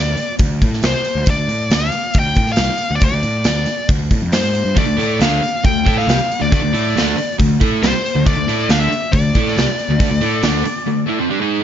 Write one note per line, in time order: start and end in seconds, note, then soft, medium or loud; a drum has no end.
0.00 0.16 D2 medium
0.00 0.34 D5 medium
0.17 muted picked electric bass stroke soft
0.17 open hi-hat medium
0.39 0.60 D2 medium
0.39 kick medium
0.39 open hi-hat medium
0.62 0.82 A2 medium
0.62 kick medium
0.62 open hi-hat soft
0.73 snare soft
0.82 0.93 C2 medium
0.82 1.30 C5 medium
0.82 snare loud
0.82 open hi-hat medium
0.94 muted picked electric bass stroke soft
1.05 open hi-hat soft
1.15 1.26 D2 medium
1.26 1.37 D2 medium
1.26 kick loud
1.26 open hi-hat medium
1.30 1.74 D5 medium
1.37 1.47 D2 medium
1.48 1.69 A2 medium
1.48 open hi-hat soft
1.70 1.91 D2 medium
1.70 snare loud
1.70 open hi-hat medium
1.74 2.18 F5 medium
1.92 muted picked electric bass stroke soft
1.92 open hi-hat soft
2.14 2.35 D2 medium
2.14 kick loud
2.14 open hi-hat medium
2.19 2.51 G5 medium
2.35 2.57 A2 medium
2.35 kick medium
2.35 open hi-hat soft
2.47 snare soft
2.52 2.95 F5 medium
2.52 open hi-hat medium
2.57 2.68 C2 medium
2.57 snare loud
2.69 muted picked electric bass stroke soft
2.78 open hi-hat soft
2.91 3.01 D2 medium
2.95 3.04 D5 medium
3.01 3.12 D2 medium
3.01 kick loud
3.01 open hi-hat medium
3.05 3.87 D5 medium
3.12 3.23 D2 medium
3.23 3.44 A2 medium
3.23 open hi-hat soft
3.44 3.66 D2 medium
3.44 snare loud
3.44 open hi-hat medium
3.66 muted picked electric bass stroke soft
3.66 open hi-hat soft
3.89 4.10 D2 medium
3.89 kick loud
3.89 open hi-hat medium
4.11 4.21 A2 medium
4.11 kick medium
4.11 open hi-hat soft
4.22 4.32 F2 medium
4.32 4.43 G2 medium
4.32 4.78 C5 medium
4.32 snare loud
4.32 open hi-hat medium
4.43 4.64 G#2 medium
4.55 open hi-hat soft
4.65 4.76 G2 medium
4.76 4.87 D2 medium
4.76 4.87 D3 medium
4.76 4.87 A3 loud
4.76 5.18 D5 medium
4.76 kick loud
4.76 open hi-hat medium
4.87 4.97 D2 medium
4.87 4.99 D3 medium
4.87 4.97 A3 medium
4.98 5.18 A2 medium
4.98 5.20 A3 medium
4.98 5.20 E4 medium
4.98 5.21 A4 medium
4.98 open hi-hat soft
5.19 5.40 D2 medium
5.19 5.41 D3 medium
5.19 5.42 A3 medium
5.19 5.42 D4 medium
5.19 5.65 F5 medium
5.19 snare loud
5.19 open hi-hat medium
5.40 muted overdriven electric guitar stroke soft
5.40 muted distorted electric guitar stroke medium
5.40 muted picked electric bass stroke soft
5.40 open hi-hat soft
5.65 5.85 D2 medium
5.65 5.82 D3 medium
5.65 5.83 A3 medium
5.65 5.98 G5 loud
5.65 kick loud
5.65 open hi-hat medium
5.86 6.06 A2 medium
5.86 6.07 A3 medium
5.86 6.08 E4 medium
5.86 6.08 A4 medium
5.86 kick medium
5.86 open hi-hat soft
5.98 6.42 F5 loud
5.98 snare soft
6.07 6.18 C2 medium
6.07 6.18 C3 medium
6.07 6.18 G3 medium
6.07 snare loud
6.07 open hi-hat medium
6.19 muted overdriven electric guitar stroke medium
6.19 muted picked electric bass stroke soft
6.19 muted distorted electric guitar stroke medium
6.32 open hi-hat soft
6.41 6.51 D2 medium
6.41 6.50 D3 medium
6.41 6.51 A3 medium
6.41 6.51 D5 medium
6.52 6.62 D2 medium
6.52 6.61 D3 medium
6.52 6.62 A3 medium
6.52 7.36 D5 medium
6.52 kick loud
6.52 open hi-hat medium
6.63 6.73 D2 medium
6.63 6.73 D3 medium
6.63 6.72 A3 medium
6.73 6.94 A2 medium
6.73 6.95 A3 medium
6.73 6.95 E4 medium
6.73 6.95 A4 medium
6.73 open hi-hat soft
6.95 7.16 D2 medium
6.95 7.16 D3 medium
6.95 7.17 A3 medium
6.95 7.17 D4 medium
6.95 snare loud
6.95 open hi-hat medium
7.17 muted picked electric bass stroke soft
7.17 muted distorted electric guitar stroke medium
7.17 muted overdriven electric guitar stroke medium
7.17 open hi-hat soft
7.39 7.59 D2 medium
7.39 7.56 D3 medium
7.39 7.56 A3 medium
7.39 kick loud
7.39 open hi-hat medium
7.61 7.81 A2 medium
7.61 7.82 A3 medium
7.61 7.82 E4 loud
7.61 7.82 A4 loud
7.61 kick medium
7.61 open hi-hat medium
7.82 7.92 C2 medium
7.82 7.93 C3 medium
7.82 7.93 G3 medium
7.82 8.23 C5 medium
7.82 snare loud
7.82 open hi-hat medium
7.93 muted overdriven electric guitar stroke medium
7.93 muted picked electric bass stroke soft
7.93 muted distorted electric guitar stroke medium
8.06 open hi-hat medium
8.15 8.25 D2 medium
8.15 8.24 D3 medium
8.15 8.25 A3 medium
8.26 8.36 D2 medium
8.26 8.36 D3 medium
8.26 8.36 A3 loud
8.26 8.71 D5 loud
8.26 kick loud
8.26 open hi-hat medium
8.36 8.46 D2 medium
8.36 8.47 D3 medium
8.36 8.47 A3 medium
8.47 8.67 A2 medium
8.47 8.68 A3 medium
8.47 8.69 E4 medium
8.47 8.69 A4 medium
8.47 open hi-hat medium
8.68 8.89 D2 medium
8.68 8.89 D3 medium
8.68 8.90 A3 medium
8.68 8.90 D4 medium
8.68 8.79 F5 loud
8.68 snare loud
8.68 open hi-hat medium
8.80 9.13 E5 loud
8.90 muted picked electric bass stroke soft
8.90 muted distorted electric guitar stroke medium
8.90 muted overdriven electric guitar stroke medium
8.90 open hi-hat soft
9.12 9.33 D2 medium
9.12 9.29 D3 medium
9.12 9.30 A3 medium
9.12 11.25 D5 medium
9.12 kick loud
9.12 open hi-hat medium
9.34 9.55 A2 medium
9.34 9.55 A3 medium
9.34 9.55 E4 medium
9.34 9.56 A4 loud
9.34 kick medium
9.34 open hi-hat soft
9.48 snare soft
9.56 9.66 C2 medium
9.56 9.66 C3 medium
9.56 9.66 G3 medium
9.56 snare loud
9.56 open hi-hat medium
9.66 muted picked electric bass stroke soft
9.66 muted distorted electric guitar stroke medium
9.66 muted overdriven electric guitar stroke medium
9.79 open hi-hat soft
9.89 9.99 D2 medium
9.89 9.97 D3 medium
9.89 9.98 A3 medium
9.98 10.10 D2 medium
9.98 10.09 D3 medium
9.98 10.10 A3 loud
9.98 kick loud
9.98 open hi-hat medium
10.11 10.20 D2 medium
10.11 10.21 D3 medium
10.11 10.21 A3 medium
10.21 10.41 A2 medium
10.21 10.41 A3 medium
10.21 10.42 E4 medium
10.21 10.43 A4 medium
10.21 open hi-hat soft
10.42 10.63 D2 medium
10.42 10.63 D3 medium
10.42 10.64 A3 medium
10.42 10.64 D4 medium
10.42 snare loud
10.42 open hi-hat medium
10.65 muted picked electric bass stroke soft
10.65 muted overdriven electric guitar stroke medium
10.65 muted distorted electric guitar stroke medium
10.65 open hi-hat soft
10.86 11.03 D3 medium
10.86 11.04 A3 medium
11.06 11.17 A3 medium
11.06 11.17 E4 medium
11.18 11.29 F3 medium
11.18 11.29 C4 medium
11.30 11.40 G3 medium
11.30 11.40 D4 medium
11.41 11.62 G#3 medium
11.41 11.62 D#4 medium
11.41 11.62 G#4 medium